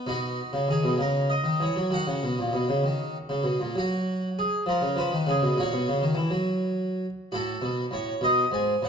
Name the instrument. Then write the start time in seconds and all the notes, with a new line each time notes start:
harpsichord
0.07 B2 D#4 F#4
0.53 C#3
0.68 D#3 G#4
0.84 B2
0.98 C#3 A#4
1.30 D#5
1.44 D#3
1.60 E3 C#5
1.76 F#3
1.91 D#3 F#4 F#5
2.07 C#3
2.23 B2
2.39 A#2
2.53 B2
2.69 C#3
2.84 D#3
3.29 C#3
3.43 B2
3.60 A#2
3.75 F#3 F#4
4.39 G#4
4.66 F3 A#4
4.82 C#3
4.96 F3 B4
5.12 D#3
5.27 C#3 G#4
5.42 B2
5.58 A#2 F#4 C#5
5.73 B2
5.88 C#3
6.02 D#3
6.15 E3
6.30 F#3
7.32 A2 F#4 A4
7.62 B2
7.91 A2 C#5
8.21 B2 D#5
8.52 G#2 G#5
8.82 A2 F#5